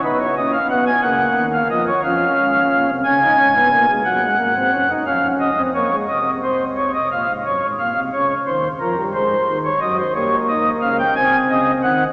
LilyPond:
<<
  \new Staff \with { instrumentName = "Pipe organ" } { \time 6/8 \key fis \major \tempo 4. = 59 << { b'16 cis''16 dis''16 eis''16 fis''16 gis''16 fis''8. eis''16 dis''16 cis''16 | eis''4. gis''4. | fis''4. eis''8 dis''8 cis''8 | ees''8 c''8 cis''16 ees''16 eis''8 cis''8 eis''8 |
cis''8 bis'8 ais'8 bis'8. cis''16 dis''16 bis'16 | cis''8 dis''8 eis''16 g''16 gis''8 dis''8 fis''8 | } \\ { dis'8 cis'8 b8 ais4. | cis'4. cis'16 dis'16 cis'16 b16 ais16 gis16 | fis16 gis16 ais16 bis16 cis'16 dis'16 cis'8. bis16 ais16 gis16 | r2. |
r2. | ais4. bis4. | } >> }
  \new Staff \with { instrumentName = "Pipe organ" } { \clef bass \time 6/8 \key fis \major <b,, b,>8 <ais,, ais,>8 <b,, b,>8 <cis, cis>8 <dis, dis>8 <eis, eis>8 | <eis, eis>8 <gis,, gis,>8 <ais,, ais,>16 <bis,, bis,>16 <cis, cis>8 <gis,, gis,>8 <b,, b,>8 | <ais,, ais,>8 <gis,, gis,>8 <fis,, fis,>8 <eis,, eis,>4. | <c, c>4. <ais,, ais,>16 <gis,, gis,>16 <fis,, fis,>16 <gis,, gis,>16 <ais,, ais,>16 <bis,, bis,>16 |
<cis, cis>8 <dis, dis>8 <eis, eis>16 <g, g>16 <gis, gis>8 <dis, dis>8 <fis, fis>8 | <g, g>8 <dis, dis>8 <cis, cis>8 <bis,, bis,>8 <cis, cis>8 <dis, dis>8 | }
>>